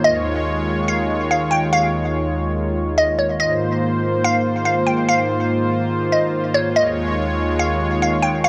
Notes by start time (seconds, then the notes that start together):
Already playing: D#3
0.04 D#2 G#3 F4 C#5 D#5
0.88 F5
1.31 F5
1.51 G5
1.73 F5
2.98 D#5
3.19 C#5
3.40 G#2 A#3 C5 D#5
4.24 F5
4.65 F5
4.87 G5
5.09 F5
6.12 D#5
6.54 C#5
6.76 D#2 D#3 G#3 C#5 D#5
7.59 F5
8.02 F5
8.22 G5
8.44 F5